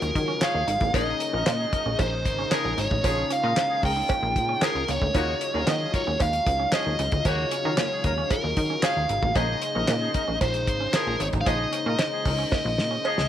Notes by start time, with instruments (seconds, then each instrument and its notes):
Already playing: analog synth pad C#3 F#3 G#3 G#4, analog polysynth G#3 D#4 F4 F#4 C#5, lead electric guitar A#4
0.02 analog synth bass D#2, muted clean electric guitar stroke, closed hi-hat
0.15 analog synth bass D#3, kick, closed hi-hat
0.28 clean electric guitar C#4
0.41 horn section F3 C#4 G#4, lead electric guitar F5, muted clean electric guitar stroke, snare, clap, closed hi-hat, cowbell
0.55 analog synth bass D#2
0.67 analog synth bass G#1, clean electric guitar D#4, closed hi-hat
0.81 analog synth bass A1, clean electric guitar A#3, kick, closed hi-hat
0.93 analog synth bass A#1, analog synth pad C#3 C#4 D#4, horn section F3 D#4 G#4, analog polysynth A#3 C#4 D#4 G#4 A#4, clean electric guitar A#3, lead electric guitar D#5, kick, closed hi-hat, cowbell
1.20 muted clean electric guitar stroke, closed hi-hat
1.33 analog synth bass A#1, horn section F3 D#4 A#4, clean electric guitar C#4
1.46 analog synth bass A#2, clean electric guitar A#3, snare, clap, closed hi-hat, cowbell
1.59 horn section F3 D#4 G#4
1.72 horn section F3 D#4 A#4, muted clean electric guitar stroke, kick, closed hi-hat
1.86 analog synth bass A#1, clean electric guitar C#4
1.99 analog synth bass A#1, clean electric guitar D#4, lead electric guitar C5, kick, closed hi-hat, cowbell
2.13 muted clean electric guitar stroke
2.25 analog synth bass G#1, kick, closed hi-hat
2.39 clean electric guitar C#4
2.51 horn section F3 D#4 G#4, lead electric guitar A#4, muted clean electric guitar stroke, snare, clap, closed hi-hat, cowbell
2.65 analog synth bass A#1
2.78 analog synth bass G#1, clean electric guitar D#4, lead electric guitar C#5, closed hi-hat
2.91 analog synth bass A1, clean electric guitar D#4, kick
3.04 analog synth bass A#1, horn section F3 D#4 G#4, analog synth pad F4, kick, closed hi-hat, cowbell
3.17 muted clean electric guitar stroke
3.30 clean electric guitar C#4, lead electric guitar F5, closed hi-hat
3.43 analog synth bass A#2, horn section F3 D#4 A#4, clean electric guitar F4
3.57 clean electric guitar D#4, snare, clap, closed hi-hat, cowbell
3.69 horn section F3 D#4 G#4
3.83 analog synth bass C#2, horn section F3 D#4 A#4, lead electric guitar G5, muted clean electric guitar stroke, kick, open hi-hat
3.97 clean electric guitar D#4
4.09 clean electric guitar C#4, kick, closed hi-hat, cowbell
4.23 analog synth bass A#1, muted clean electric guitar stroke
4.36 analog synth bass A#2, kick, closed hi-hat
4.49 clean electric guitar C#4
4.62 horn section F3 D#4 G#4, lead electric guitar A#4, muted clean electric guitar stroke, snare, clap, closed hi-hat, cowbell
4.75 analog synth bass C#2
4.88 analog synth bass C#2, clean electric guitar A#3, lead electric guitar C#5, closed hi-hat
5.02 analog synth bass D2, clean electric guitar G#3, kick
5.14 analog synth bass D#2, analog synth pad C#3 F#3 G#3 F5, horn section C#3 A#3 F#4, analog polysynth G#3 D#4 F4 F#4 C#5, clean electric guitar D#4, kick, closed hi-hat, cowbell
5.41 muted clean electric guitar stroke, closed hi-hat
5.54 analog synth bass D#2, horn section F#3 F4 A#4, clean electric guitar C#4
5.67 analog synth bass D#3, clean electric guitar A#3, lead electric guitar D#5, snare, clap, closed hi-hat, cowbell
5.80 horn section F3 C#4 G#4
5.93 horn section F#3 F4 A#4, lead electric guitar C#5, muted clean electric guitar stroke, kick, closed hi-hat
6.07 analog synth bass D#2, clean electric guitar C#4
6.20 analog synth bass D#2, clean electric guitar D#4, lead electric guitar F5, kick, closed hi-hat, cowbell
6.33 muted clean electric guitar stroke, closed hi-hat
6.46 analog synth bass C#2, kick, closed hi-hat
6.60 clean electric guitar C#4
6.72 horn section F3 C#4 G#4, lead electric guitar D#5, muted clean electric guitar stroke, snare, clap, closed hi-hat, cowbell
6.86 analog synth bass D#2
6.99 analog synth bass C#2, clean electric guitar D#4, closed hi-hat
7.12 analog synth bass D2, clean electric guitar D#4, kick, closed hi-hat
7.25 analog synth bass D#2, horn section C#3 A#3 F#4, lead electric guitar C#5, kick, closed hi-hat, cowbell
7.39 muted clean electric guitar stroke
7.51 clean electric guitar C#4, closed hi-hat
7.64 analog synth bass D#3, horn section F#3 F4 A#4, clean electric guitar C#4
7.77 clean electric guitar A#3, snare, clap, closed hi-hat, cowbell
7.90 horn section F3 C#4 G#4
8.04 analog synth bass D#2, horn section F#3 F4 A#4, muted clean electric guitar stroke, kick, closed hi-hat
8.18 clean electric guitar C#4
8.30 clean electric guitar D#4, lead electric guitar A#4, kick, closed hi-hat, cowbell
8.44 analog synth bass D#2, muted clean electric guitar stroke
8.57 analog synth bass D#3, kick, closed hi-hat
8.70 clean electric guitar C#4
8.82 horn section F3 C#4 G#4, lead electric guitar F5, muted clean electric guitar stroke, snare, clap, closed hi-hat, cowbell
8.97 analog synth bass D#2
9.09 analog synth bass G#1, clean electric guitar D#4, closed hi-hat
9.23 analog synth bass A1, clean electric guitar A#3, kick
9.35 analog synth bass A#1, horn section F3 D#4 G#4, analog polysynth A#3 C#4 D#4 G#4 C5, clean electric guitar A#3, analog synth pad D#4 C5, lead electric guitar D#5, kick, closed hi-hat, cowbell
9.62 muted clean electric guitar stroke, closed hi-hat
9.75 analog synth bass A#1, horn section F3 D#4 A#4, clean electric guitar C#4
9.88 analog synth bass A#2, clean electric guitar A#3, snare, clap, closed hi-hat, cowbell
10.01 horn section F3 D#4 G#4
10.14 horn section F3 D#4 A#4, muted clean electric guitar stroke, kick, closed hi-hat
10.28 analog synth bass A#1, clean electric guitar C#4
10.41 analog synth bass A#1, clean electric guitar D#4, lead electric guitar C5, kick, closed hi-hat, cowbell
10.54 muted clean electric guitar stroke, closed hi-hat
10.67 analog synth bass G#1, kick, closed hi-hat
10.80 clean electric guitar C#4
10.93 horn section F3 D#4 G#4, lead electric guitar A#4, muted clean electric guitar stroke, snare, clap, closed hi-hat, cowbell
11.07 analog synth bass A#1
11.20 analog synth bass G#1, clean electric guitar D#4, lead electric guitar C#5, closed hi-hat
11.33 analog synth bass A1, clean electric guitar D#4, kick, closed hi-hat
11.41 lead electric guitar F5
11.46 analog synth bass A#1, horn section F3 D#4 G#4, lead electric guitar D#5, kick, closed hi-hat, cowbell
11.60 muted clean electric guitar stroke
11.73 clean electric guitar C#4, closed hi-hat
11.86 analog synth bass A#2, horn section F3 D#4 A#4, clean electric guitar C#4
11.99 clean electric guitar D#4, snare, clap, closed hi-hat, cowbell
12.12 horn section F3 D#4 G#4
12.25 analog synth bass C#2, horn section F3 D#4 A#4, muted clean electric guitar stroke, kick, open hi-hat
12.39 clean electric guitar C#4
12.52 clean electric guitar A#3, lead electric guitar D#5, kick, snare, cowbell
12.65 analog synth bass A#1, muted clean electric guitar stroke
12.78 analog synth bass A#2, snare
12.91 clean electric guitar C#4
13.04 horn section F3 D#4 G#4, muted clean electric guitar stroke, cowbell
13.18 analog synth bass C#2, snare